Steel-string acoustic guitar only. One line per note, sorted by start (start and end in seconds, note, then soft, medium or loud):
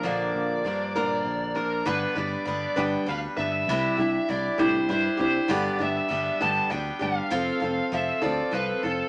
0.03 0.64 A#2 medium
0.03 0.65 D3 medium
0.03 0.63 F3 medium
0.03 0.65 A#3 medium
0.03 0.65 D4 medium
0.03 0.65 A#4 medium
0.64 0.95 F3 soft
0.64 0.95 A#3 medium
0.64 0.95 D4 medium
0.64 0.94 A#4 medium
0.96 1.57 A#2 medium
0.96 1.57 D3 medium
0.96 1.56 F3 medium
0.96 1.55 A#3 medium
0.96 1.54 D4 medium
0.96 1.54 A#4 medium
1.55 1.85 F3 soft
1.55 1.86 A#3 soft
1.55 1.86 D4 soft
1.55 1.86 A#4 medium
1.85 2.16 G2 medium
1.85 2.16 D3 medium
1.85 2.16 G3 medium
1.85 2.17 B3 medium
1.85 2.15 D4 medium
1.85 2.14 B4 medium
2.15 2.44 G3 soft
2.15 2.46 B3 soft
2.15 2.46 D4 medium
2.15 2.46 B4 medium
2.45 2.76 G3 medium
2.45 2.76 B3 medium
2.45 2.75 D4 medium
2.45 2.75 B4 medium
2.76 3.08 G2 medium
2.76 3.08 D3 medium
2.76 3.05 G3 medium
2.76 3.07 B3 medium
2.76 3.07 D4 medium
2.76 3.07 B4 medium
3.06 3.37 G3 medium
3.06 3.38 B3 medium
3.06 3.37 D4 medium
3.06 3.36 B4 medium
3.37 3.68 G3 soft
3.37 3.69 B3 soft
3.37 3.68 D4 soft
3.37 3.68 B4 medium
3.69 3.99 C3 medium
3.69 3.99 G3 medium
3.69 3.99 D4 medium
3.69 3.98 E4 medium
3.69 3.96 G4 medium
3.97 4.28 D4 soft
3.97 4.29 E4 soft
3.97 4.28 G4 medium
4.29 4.59 G3 medium
4.29 4.58 D4 medium
4.29 4.58 E4 medium
4.29 4.57 G4 medium
4.58 4.90 C3 medium
4.58 4.88 G3 medium
4.58 4.89 D4 medium
4.58 4.89 E4 medium
4.58 4.89 G4 medium
4.89 5.19 G3 medium
4.89 5.19 D4 medium
4.89 5.18 E4 medium
4.89 5.16 G4 medium
5.17 5.49 D4 soft
5.17 5.50 E4 soft
5.17 5.49 G4 medium
5.48 5.79 G2 medium
5.48 5.80 D3 medium
5.48 5.80 G3 medium
5.48 5.80 B3 loud
5.48 5.79 D4 medium
5.48 5.77 G4 loud
5.79 6.07 G3 soft
5.79 6.08 B3 soft
5.79 6.09 D4 soft
5.79 6.10 G4 medium
6.09 6.40 G3 medium
6.09 6.40 B3 medium
6.09 6.39 D4 medium
6.09 6.39 G4 medium
6.41 6.72 G2 medium
6.41 6.71 D3 medium
6.41 6.69 G3 medium
6.41 6.70 B3 medium
6.41 6.70 D4 medium
6.41 6.71 G4 medium
6.70 7.01 G3 medium
6.70 7.00 B3 medium
6.70 6.99 D4 medium
6.70 6.98 G4 medium
6.99 7.30 G3 soft
6.99 7.31 B3 soft
6.99 7.31 D4 medium
6.99 7.31 G4 medium
7.30 7.61 F3 medium
7.30 7.62 C4 medium
7.30 7.61 F4 medium
7.30 7.59 A4 medium
7.60 7.92 C4 soft
7.60 7.92 F4 soft
7.60 7.91 A4 medium
7.92 8.22 F3 medium
7.92 8.22 C4 medium
7.92 8.21 F4 medium
7.92 8.20 A4 medium
8.22 8.50 F3 medium
8.22 8.51 C4 medium
8.22 8.53 F4 medium
8.22 8.52 A4 medium
8.51 8.82 F3 medium
8.51 8.83 C4 medium
8.51 8.83 F4 medium
8.51 8.82 A4 medium
8.83 9.09 C4 soft
8.83 9.09 F4 soft
8.83 9.09 A4 medium